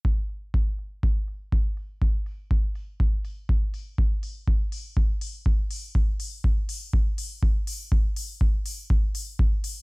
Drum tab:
HH |-o-o-o-o|-o-o-o-o|-o-o-o-o|-o-o-o-o|
BD |o-o-o-o-|o-o-o-o-|o-o-o-o-|o-o-o-o-|

HH |-o-o-o-o|
BD |o-o-o-o-|